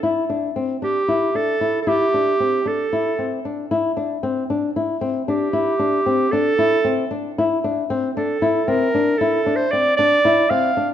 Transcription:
0, 0, Header, 1, 3, 480
1, 0, Start_track
1, 0, Tempo, 523104
1, 35, Time_signature, 7, 3, 24, 8
1, 10037, End_track
2, 0, Start_track
2, 0, Title_t, "Clarinet"
2, 0, Program_c, 0, 71
2, 763, Note_on_c, 0, 67, 79
2, 1246, Note_on_c, 0, 69, 83
2, 1260, Note_off_c, 0, 67, 0
2, 1661, Note_off_c, 0, 69, 0
2, 1667, Note_on_c, 0, 69, 61
2, 1721, Note_on_c, 0, 67, 89
2, 1735, Note_off_c, 0, 69, 0
2, 2452, Note_on_c, 0, 69, 73
2, 2466, Note_off_c, 0, 67, 0
2, 3169, Note_off_c, 0, 69, 0
2, 4843, Note_on_c, 0, 67, 78
2, 5793, Note_on_c, 0, 69, 103
2, 5807, Note_off_c, 0, 67, 0
2, 6518, Note_off_c, 0, 69, 0
2, 7480, Note_on_c, 0, 69, 70
2, 7964, Note_on_c, 0, 70, 82
2, 7978, Note_off_c, 0, 69, 0
2, 8421, Note_on_c, 0, 69, 83
2, 8434, Note_off_c, 0, 70, 0
2, 8771, Note_on_c, 0, 72, 71
2, 8785, Note_off_c, 0, 69, 0
2, 8911, Note_on_c, 0, 74, 84
2, 8925, Note_off_c, 0, 72, 0
2, 9138, Note_off_c, 0, 74, 0
2, 9144, Note_on_c, 0, 74, 89
2, 9633, Note_on_c, 0, 77, 79
2, 9647, Note_off_c, 0, 74, 0
2, 9995, Note_off_c, 0, 77, 0
2, 10037, End_track
3, 0, Start_track
3, 0, Title_t, "Nylon-string guitar"
3, 0, Program_c, 1, 24
3, 28, Note_on_c, 1, 64, 66
3, 212, Note_off_c, 1, 64, 0
3, 271, Note_on_c, 1, 62, 61
3, 454, Note_off_c, 1, 62, 0
3, 513, Note_on_c, 1, 60, 59
3, 696, Note_off_c, 1, 60, 0
3, 753, Note_on_c, 1, 62, 67
3, 936, Note_off_c, 1, 62, 0
3, 994, Note_on_c, 1, 64, 57
3, 1177, Note_off_c, 1, 64, 0
3, 1238, Note_on_c, 1, 62, 67
3, 1420, Note_off_c, 1, 62, 0
3, 1477, Note_on_c, 1, 64, 59
3, 1660, Note_off_c, 1, 64, 0
3, 1715, Note_on_c, 1, 64, 65
3, 1898, Note_off_c, 1, 64, 0
3, 1964, Note_on_c, 1, 62, 61
3, 2144, Note_off_c, 1, 62, 0
3, 2203, Note_on_c, 1, 60, 54
3, 2384, Note_off_c, 1, 60, 0
3, 2437, Note_on_c, 1, 62, 71
3, 2620, Note_off_c, 1, 62, 0
3, 2685, Note_on_c, 1, 64, 58
3, 2865, Note_off_c, 1, 64, 0
3, 2924, Note_on_c, 1, 60, 61
3, 3105, Note_off_c, 1, 60, 0
3, 3166, Note_on_c, 1, 62, 56
3, 3346, Note_off_c, 1, 62, 0
3, 3405, Note_on_c, 1, 64, 73
3, 3585, Note_off_c, 1, 64, 0
3, 3640, Note_on_c, 1, 62, 68
3, 3822, Note_off_c, 1, 62, 0
3, 3882, Note_on_c, 1, 60, 65
3, 4064, Note_off_c, 1, 60, 0
3, 4129, Note_on_c, 1, 62, 72
3, 4308, Note_off_c, 1, 62, 0
3, 4369, Note_on_c, 1, 64, 62
3, 4548, Note_off_c, 1, 64, 0
3, 4599, Note_on_c, 1, 60, 75
3, 4782, Note_off_c, 1, 60, 0
3, 4846, Note_on_c, 1, 62, 67
3, 5026, Note_off_c, 1, 62, 0
3, 5075, Note_on_c, 1, 64, 75
3, 5259, Note_off_c, 1, 64, 0
3, 5316, Note_on_c, 1, 62, 64
3, 5499, Note_off_c, 1, 62, 0
3, 5562, Note_on_c, 1, 60, 62
3, 5743, Note_off_c, 1, 60, 0
3, 5806, Note_on_c, 1, 62, 75
3, 5986, Note_off_c, 1, 62, 0
3, 6042, Note_on_c, 1, 64, 65
3, 6223, Note_off_c, 1, 64, 0
3, 6280, Note_on_c, 1, 60, 73
3, 6462, Note_off_c, 1, 60, 0
3, 6522, Note_on_c, 1, 62, 68
3, 6703, Note_off_c, 1, 62, 0
3, 6775, Note_on_c, 1, 64, 78
3, 6951, Note_off_c, 1, 64, 0
3, 7012, Note_on_c, 1, 62, 69
3, 7189, Note_off_c, 1, 62, 0
3, 7250, Note_on_c, 1, 60, 67
3, 7427, Note_off_c, 1, 60, 0
3, 7495, Note_on_c, 1, 62, 72
3, 7670, Note_off_c, 1, 62, 0
3, 7725, Note_on_c, 1, 64, 69
3, 7904, Note_off_c, 1, 64, 0
3, 7962, Note_on_c, 1, 60, 75
3, 8142, Note_off_c, 1, 60, 0
3, 8207, Note_on_c, 1, 62, 67
3, 8385, Note_off_c, 1, 62, 0
3, 8449, Note_on_c, 1, 64, 74
3, 8626, Note_off_c, 1, 64, 0
3, 8683, Note_on_c, 1, 62, 71
3, 8862, Note_off_c, 1, 62, 0
3, 8929, Note_on_c, 1, 60, 64
3, 9105, Note_off_c, 1, 60, 0
3, 9165, Note_on_c, 1, 62, 69
3, 9343, Note_off_c, 1, 62, 0
3, 9404, Note_on_c, 1, 64, 68
3, 9582, Note_off_c, 1, 64, 0
3, 9639, Note_on_c, 1, 60, 68
3, 9818, Note_off_c, 1, 60, 0
3, 9881, Note_on_c, 1, 62, 60
3, 10037, Note_off_c, 1, 62, 0
3, 10037, End_track
0, 0, End_of_file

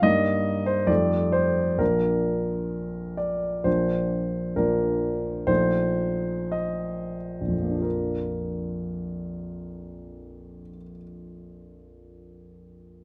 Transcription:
0, 0, Header, 1, 2, 480
1, 0, Start_track
1, 0, Key_signature, -2, "major"
1, 0, Tempo, 841515
1, 25, Time_signature, 2, 2, 24, 8
1, 506, Tempo, 920245
1, 2906, Tempo, 1047120
1, 3386, Tempo, 1315789
1, 5760, End_track
2, 0, Start_track
2, 0, Title_t, "Grand piano"
2, 0, Program_c, 0, 0
2, 0, Control_c, 0, 64, 127
2, 12, Note_on_c, 0, 43, 49
2, 16, Note_on_c, 0, 75, 89
2, 17, Note_on_c, 0, 55, 41
2, 21, Note_on_c, 0, 58, 41
2, 22, Note_on_c, 0, 63, 39
2, 35, Control_c, 0, 64, 0
2, 128, Control_c, 0, 64, 127
2, 378, Note_off_c, 0, 75, 0
2, 378, Note_on_c, 0, 72, 64
2, 485, Note_off_c, 0, 43, 0
2, 488, Note_off_c, 0, 55, 0
2, 489, Note_off_c, 0, 58, 0
2, 490, Note_off_c, 0, 63, 0
2, 496, Note_on_c, 0, 41, 47
2, 496, Note_on_c, 0, 74, 72
2, 498, Note_on_c, 0, 55, 40
2, 502, Note_on_c, 0, 57, 39
2, 504, Note_off_c, 0, 72, 0
2, 506, Note_on_c, 0, 63, 36
2, 516, Control_c, 0, 64, 0
2, 617, Control_c, 0, 64, 127
2, 734, Note_on_c, 0, 72, 67
2, 736, Note_off_c, 0, 74, 0
2, 962, Note_off_c, 0, 41, 0
2, 963, Note_off_c, 0, 55, 0
2, 965, Note_off_c, 0, 57, 0
2, 967, Note_off_c, 0, 63, 0
2, 972, Note_on_c, 0, 34, 40
2, 975, Note_on_c, 0, 53, 32
2, 975, Note_on_c, 0, 70, 59
2, 977, Note_on_c, 0, 58, 33
2, 978, Note_off_c, 0, 72, 0
2, 983, Note_on_c, 0, 62, 34
2, 992, Control_c, 0, 64, 0
2, 1073, Control_c, 0, 64, 127
2, 1699, Note_on_c, 0, 74, 59
2, 1703, Note_off_c, 0, 70, 0
2, 1926, Note_off_c, 0, 34, 0
2, 1928, Note_off_c, 0, 53, 0
2, 1929, Note_off_c, 0, 58, 0
2, 1932, Note_off_c, 0, 62, 0
2, 1941, Note_on_c, 0, 34, 37
2, 1943, Note_on_c, 0, 72, 61
2, 1947, Note_on_c, 0, 53, 32
2, 1948, Note_off_c, 0, 74, 0
2, 1948, Note_on_c, 0, 58, 30
2, 1952, Note_on_c, 0, 62, 31
2, 1962, Control_c, 0, 64, 0
2, 2060, Control_c, 0, 64, 127
2, 2410, Note_off_c, 0, 34, 0
2, 2412, Note_off_c, 0, 53, 0
2, 2413, Note_off_c, 0, 58, 0
2, 2415, Note_off_c, 0, 62, 0
2, 2423, Note_on_c, 0, 34, 40
2, 2423, Note_on_c, 0, 53, 34
2, 2423, Note_on_c, 0, 70, 59
2, 2425, Note_off_c, 0, 72, 0
2, 2427, Note_on_c, 0, 58, 32
2, 2429, Note_on_c, 0, 62, 33
2, 2887, Note_off_c, 0, 34, 0
2, 2888, Note_off_c, 0, 53, 0
2, 2890, Note_off_c, 0, 58, 0
2, 2891, Note_off_c, 0, 62, 0
2, 2895, Note_on_c, 0, 34, 44
2, 2896, Note_on_c, 0, 72, 75
2, 2898, Note_on_c, 0, 53, 35
2, 2900, Note_on_c, 0, 57, 37
2, 2903, Note_off_c, 0, 70, 0
2, 2903, Note_on_c, 0, 63, 36
2, 2915, Control_c, 0, 64, 0
2, 2997, Control_c, 0, 64, 127
2, 3377, Note_on_c, 0, 75, 59
2, 3381, Note_off_c, 0, 72, 0
2, 3614, Note_off_c, 0, 75, 0
2, 3699, Note_off_c, 0, 34, 0
2, 3704, Note_on_c, 0, 34, 35
2, 3730, Note_on_c, 0, 41, 29
2, 3752, Note_off_c, 0, 53, 0
2, 3757, Note_on_c, 0, 53, 28
2, 3783, Note_on_c, 0, 58, 28
2, 3810, Note_on_c, 0, 62, 28
2, 3836, Note_on_c, 0, 65, 27
2, 3845, Note_off_c, 0, 57, 0
2, 3846, Note_off_c, 0, 63, 0
2, 3855, Note_on_c, 0, 70, 39
2, 3871, Control_c, 0, 64, 0
2, 3965, Control_c, 0, 64, 127
2, 4870, Note_off_c, 0, 34, 0
2, 4896, Note_off_c, 0, 41, 0
2, 4923, Note_off_c, 0, 53, 0
2, 4949, Note_off_c, 0, 58, 0
2, 4976, Note_off_c, 0, 62, 0
2, 5002, Note_off_c, 0, 65, 0
2, 5021, Note_off_c, 0, 70, 0
2, 5760, End_track
0, 0, End_of_file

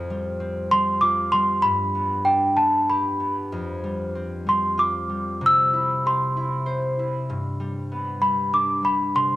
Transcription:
0, 0, Header, 1, 3, 480
1, 0, Start_track
1, 0, Tempo, 620476
1, 1269, Time_signature, 3, 2, 24, 8
1, 1752, Tempo, 632911
1, 4152, Tempo, 620476
1, 7194, End_track
2, 0, Start_track
2, 0, Title_t, "Celesta"
2, 0, Program_c, 0, 8
2, 553, Note_on_c, 0, 84, 87
2, 773, Note_off_c, 0, 84, 0
2, 782, Note_on_c, 0, 86, 86
2, 1021, Note_on_c, 0, 84, 84
2, 1032, Note_off_c, 0, 86, 0
2, 1256, Note_on_c, 0, 83, 84
2, 1272, Note_off_c, 0, 84, 0
2, 1715, Note_off_c, 0, 83, 0
2, 1740, Note_on_c, 0, 79, 71
2, 1981, Note_on_c, 0, 81, 75
2, 1993, Note_off_c, 0, 79, 0
2, 2210, Note_off_c, 0, 81, 0
2, 2230, Note_on_c, 0, 83, 65
2, 2567, Note_off_c, 0, 83, 0
2, 3438, Note_on_c, 0, 84, 75
2, 3668, Note_on_c, 0, 86, 76
2, 3682, Note_off_c, 0, 84, 0
2, 4164, Note_off_c, 0, 86, 0
2, 4176, Note_on_c, 0, 88, 99
2, 4613, Note_off_c, 0, 88, 0
2, 4646, Note_on_c, 0, 84, 69
2, 5324, Note_off_c, 0, 84, 0
2, 6309, Note_on_c, 0, 83, 71
2, 6555, Note_off_c, 0, 83, 0
2, 6557, Note_on_c, 0, 86, 70
2, 6797, Note_on_c, 0, 83, 69
2, 6800, Note_off_c, 0, 86, 0
2, 7037, Note_on_c, 0, 84, 83
2, 7041, Note_off_c, 0, 83, 0
2, 7194, Note_off_c, 0, 84, 0
2, 7194, End_track
3, 0, Start_track
3, 0, Title_t, "Harp"
3, 0, Program_c, 1, 46
3, 0, Note_on_c, 1, 41, 63
3, 0, Note_on_c, 1, 60, 52
3, 0, Note_on_c, 1, 69, 51
3, 79, Note_on_c, 1, 55, 50
3, 307, Note_off_c, 1, 60, 0
3, 310, Note_on_c, 1, 60, 52
3, 544, Note_off_c, 1, 55, 0
3, 553, Note_on_c, 1, 55, 51
3, 792, Note_on_c, 1, 65, 54
3, 1023, Note_off_c, 1, 55, 0
3, 1032, Note_on_c, 1, 55, 53
3, 1053, Note_off_c, 1, 69, 0
3, 1272, Note_on_c, 1, 43, 62
3, 1307, Note_off_c, 1, 41, 0
3, 1307, Note_off_c, 1, 55, 0
3, 1508, Note_on_c, 1, 59, 50
3, 1554, Note_off_c, 1, 60, 0
3, 1746, Note_on_c, 1, 62, 48
3, 1988, Note_off_c, 1, 59, 0
3, 1991, Note_on_c, 1, 59, 45
3, 2229, Note_on_c, 1, 67, 53
3, 2457, Note_off_c, 1, 59, 0
3, 2460, Note_on_c, 1, 59, 43
3, 2705, Note_on_c, 1, 41, 64
3, 2725, Note_off_c, 1, 65, 0
3, 2751, Note_off_c, 1, 43, 0
3, 2944, Note_on_c, 1, 55, 51
3, 3183, Note_on_c, 1, 60, 49
3, 3229, Note_off_c, 1, 59, 0
3, 3412, Note_off_c, 1, 55, 0
3, 3421, Note_on_c, 1, 55, 48
3, 3656, Note_on_c, 1, 65, 54
3, 3869, Note_off_c, 1, 62, 0
3, 3889, Note_off_c, 1, 55, 0
3, 3898, Note_on_c, 1, 55, 47
3, 4014, Note_off_c, 1, 67, 0
3, 4138, Note_on_c, 1, 48, 64
3, 4190, Note_off_c, 1, 41, 0
3, 4190, Note_off_c, 1, 55, 0
3, 4387, Note_on_c, 1, 64, 50
3, 4434, Note_off_c, 1, 65, 0
3, 4637, Note_on_c, 1, 67, 46
3, 4874, Note_off_c, 1, 64, 0
3, 4877, Note_on_c, 1, 64, 47
3, 5104, Note_on_c, 1, 72, 57
3, 5358, Note_off_c, 1, 64, 0
3, 5361, Note_on_c, 1, 64, 50
3, 5484, Note_off_c, 1, 60, 0
3, 5595, Note_on_c, 1, 43, 62
3, 5625, Note_off_c, 1, 48, 0
3, 5829, Note_on_c, 1, 55, 53
3, 6076, Note_on_c, 1, 59, 48
3, 6123, Note_off_c, 1, 72, 0
3, 6299, Note_off_c, 1, 55, 0
3, 6308, Note_on_c, 1, 55, 47
3, 6458, Note_off_c, 1, 67, 0
3, 6552, Note_on_c, 1, 62, 52
3, 6771, Note_off_c, 1, 55, 0
3, 6780, Note_on_c, 1, 55, 46
3, 7030, Note_on_c, 1, 48, 63
3, 7068, Note_off_c, 1, 43, 0
3, 7068, Note_off_c, 1, 55, 0
3, 7076, Note_off_c, 1, 59, 0
3, 7194, Note_off_c, 1, 48, 0
3, 7194, Note_off_c, 1, 62, 0
3, 7194, Note_off_c, 1, 64, 0
3, 7194, End_track
0, 0, End_of_file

